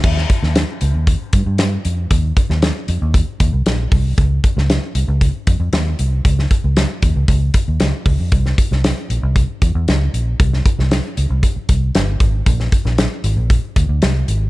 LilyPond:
<<
  \new Staff \with { instrumentName = "Fingered electric bass" } { \clef bass \time 4/4 \key ees \mixolydian \tempo 4 = 116 ees,8 r16 ees,8 r16 des,16 ees,8 r16 g,16 g,8. f,8 | ees,8 r16 ees,8 r16 f,16 ees,8 r16 ees,16 c,16 bes,,8 c,8 | des,8 r16 des,8 r16 c,16 des,8 r16 f,16 f,16 ees,8 c,8 | des,8 r16 des,8 r16 ees,16 des,16 des,8 r16 ees,16 des,16 r16 des,16 f,16 |
c,8 r16 c,8 r16 bes,,16 c,8 r16 e,16 e,16 des,8 bes,,8 | c,8 r16 c,8 r16 des,16 c,16 r8 c,8 g,,8 aes,,8 | bes,,8 r16 bes,,8 r16 aes,,16 bes,,8 r16 d,16 d,16 c,8 aes,,8 | }
  \new DrumStaff \with { instrumentName = "Drums" } \drummode { \time 4/4 <cymc bd>16 sn16 <hh bd>16 sn16 <hh sn>8 hh8 <hh bd>8 <hh bd>8 <hh sn>8 hh8 | <hh bd>8 <hh bd>16 sn16 <hh sn>8 hh8 <hh bd>8 <hh bd>8 <hh sn>8 <hho bd>8 | <hh bd>8 <hh bd>16 sn16 <hh sn>8 hh8 <hh bd>8 <hh bd>8 <hh sn>8 hh8 | <hh bd>16 sn16 <hh bd>8 <hh sn>8 <hh bd>8 <hh bd>8 <hh bd>8 <hh sn>8 <hho bd>8 |
<hh bd>16 sn16 <hh bd>16 sn16 <hh sn>8 hh8 <hh bd>8 <hh bd>8 <hh sn>8 hh8 | <hh bd>16 sn16 <hh bd>16 sn16 <hh sn>8 hh8 <hh bd>8 <hh bd>8 <hh sn>8 <hh bd>8 | <hh bd>16 sn16 <hh bd>16 sn16 <hh sn>8 hh8 <hh bd>8 <hh bd>8 <hh sn>8 hh8 | }
>>